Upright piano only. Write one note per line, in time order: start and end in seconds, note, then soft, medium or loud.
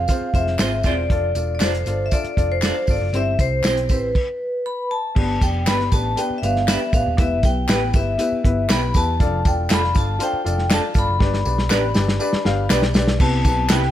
0.08 0.27 C4 medium
0.08 0.27 F4 medium
0.08 0.27 G#4 medium
0.08 0.27 C5 medium
0.33 0.52 C4 medium
0.33 0.52 F4 medium
0.33 0.53 G#4 medium
0.33 0.53 C5 medium
0.59 0.77 C4 medium
0.59 0.78 F4 medium
0.59 0.78 G#4 medium
0.59 0.78 C5 medium
0.85 1.03 C4 medium
0.85 1.03 F4 medium
0.85 1.04 G#4 medium
0.85 1.04 C5 medium
1.10 1.29 D4 medium
1.10 1.29 F4 medium
1.10 1.29 A4 medium
1.10 1.29 D5 medium
1.36 1.54 D4 medium
1.36 1.54 F4 medium
1.36 1.54 A4 medium
1.36 1.55 D5 medium
1.60 1.79 D4 medium
1.60 1.79 F4 medium
1.60 1.80 A4 medium
1.60 1.80 D5 medium
1.86 2.05 D4 medium
1.86 2.05 F4 medium
1.86 2.06 A4 medium
1.86 2.06 D5 medium
2.11 2.30 D4 medium
2.11 2.30 F4 medium
2.11 2.31 A4 medium
2.11 2.31 D5 medium
2.37 2.55 D4 medium
2.37 2.55 F4 medium
2.37 2.56 A4 medium
2.37 2.56 D5 medium
2.62 2.81 D4 medium
2.62 2.81 F4 medium
2.62 2.81 A4 medium
2.62 2.81 D5 medium
2.88 3.06 D4 medium
2.88 3.07 F4 medium
2.88 3.07 A4 medium
2.88 3.07 D5 medium
3.13 3.32 C4 loud
3.13 3.32 E4 medium
3.13 3.32 G4 medium
3.13 3.32 C5 loud
3.38 3.57 C4 medium
3.38 3.57 E4 medium
3.38 3.57 G4 soft
3.38 3.58 C5 medium
3.64 3.82 C4 medium
3.64 3.83 E4 medium
3.64 3.83 G4 medium
3.64 3.83 C5 medium
3.89 4.08 C4 medium
3.89 4.08 E4 medium
3.89 4.08 G4 medium
3.89 4.08 C5 medium
5.15 5.34 B3 medium
5.15 5.34 D4 medium
5.15 5.35 G4 medium
5.15 5.35 B4 medium
5.41 5.60 B3 medium
5.41 5.60 D4 medium
5.41 5.60 G4 medium
5.41 5.61 D5 medium
5.67 5.85 B3 medium
5.67 5.85 D4 medium
5.67 5.86 G4 medium
5.67 5.86 B4 medium
5.91 6.10 B3 medium
5.91 6.10 D4 medium
5.91 6.11 G4 medium
5.91 6.11 B4 medium
6.16 6.35 B3 medium
6.16 6.35 D4 medium
6.16 6.35 G4 medium
6.16 6.36 B4 loud
6.42 6.61 B3 medium
6.42 6.61 D4 medium
6.42 6.61 G4 medium
6.42 6.61 B4 medium
6.67 6.86 B3 medium
6.67 6.86 D4 medium
6.67 6.86 G4 medium
6.67 6.87 B4 medium
6.92 7.11 B3 medium
6.92 7.11 D4 medium
6.92 7.11 G4 medium
6.92 7.12 B4 medium
7.17 7.36 B3 medium
7.17 7.36 E4 medium
7.17 7.37 G4 medium
7.17 7.37 B4 loud
7.43 7.61 B3 medium
7.43 7.62 E4 soft
7.43 7.62 G4 medium
7.43 7.62 B4 medium
7.68 7.87 B3 medium
7.68 7.87 E4 medium
7.68 7.87 G4 medium
7.68 7.87 B4 medium
7.93 8.12 B3 medium
7.93 8.12 E4 medium
7.93 8.13 G4 medium
7.93 8.13 B4 medium
8.18 8.37 B3 medium
8.18 8.37 E4 medium
8.18 8.37 G4 medium
8.18 8.38 B4 medium
8.43 8.62 B3 medium
8.43 8.62 E4 medium
8.43 8.63 G4 medium
8.43 8.63 B4 medium
8.68 8.87 B3 medium
8.68 8.87 E4 medium
8.68 8.88 G4 medium
8.68 8.88 B4 medium
8.93 9.12 B3 medium
8.93 9.13 E4 medium
8.93 9.13 G4 medium
8.93 9.13 B4 medium
9.19 9.38 D4 medium
9.19 9.38 F4 medium
9.19 9.38 A4 medium
9.19 9.39 D5 loud
9.44 9.63 D4 medium
9.44 9.63 F4 medium
9.44 9.63 A4 medium
9.44 9.64 D5 medium
9.69 9.88 D4 medium
9.69 9.88 F4 medium
9.69 9.88 A4 medium
9.69 9.89 D5 medium
9.94 10.13 D4 medium
9.94 10.13 F4 medium
9.94 10.13 A4 medium
9.94 10.14 D5 medium
10.19 10.38 D4 medium
10.19 10.38 F4 medium
10.19 10.38 A4 medium
10.19 10.39 C5 medium
10.44 10.63 D4 medium
10.44 10.63 F4 medium
10.44 10.63 A4 medium
10.44 10.64 D5 medium
10.69 10.88 D4 medium
10.69 10.88 F4 medium
10.69 10.88 A4 medium
10.69 10.89 D5 medium
10.94 11.13 D4 medium
10.94 11.13 F4 medium
10.94 11.13 A4 medium
10.94 11.14 D5 medium
11.19 11.38 D4 loud
11.19 11.38 G4 medium
11.19 11.38 B4 loud
11.19 11.39 D5 loud
11.45 11.63 D4 medium
11.45 11.63 G4 medium
11.45 11.64 B4 medium
11.45 11.64 D5 medium
11.69 11.88 D4 medium
11.69 11.88 G4 medium
11.69 11.88 B4 medium
11.69 11.89 D5 medium
11.94 12.13 D4 medium
11.94 12.13 G4 medium
11.94 12.14 B4 medium
11.94 12.14 D5 loud
12.19 12.38 D4 loud
12.19 12.38 G4 loud
12.19 12.39 B4 loud
12.19 12.39 D5 loud
12.44 12.63 D4 loud
12.44 12.63 G4 medium
12.44 12.63 B4 medium
12.44 12.64 F5 loud
12.69 12.88 D4 medium
12.69 12.88 G4 medium
12.69 12.88 B4 medium
12.69 12.88 D5 loud
12.94 13.13 D4 medium
12.94 13.13 G4 medium
12.94 13.13 B4 medium
12.94 13.14 D5 medium
13.19 13.38 B3 medium
13.19 13.38 C4 medium
13.19 13.38 E4 medium
13.19 13.38 G4 medium
13.19 13.39 B4 loud
13.44 13.62 B3 medium
13.44 13.63 C4 medium
13.44 13.63 E4 medium
13.44 13.63 G4 medium
13.44 13.63 B4 medium
13.70 13.88 B3 medium
13.70 13.88 C4 medium
13.70 13.88 E4 medium
13.70 13.89 G4 medium
13.70 13.89 B4 medium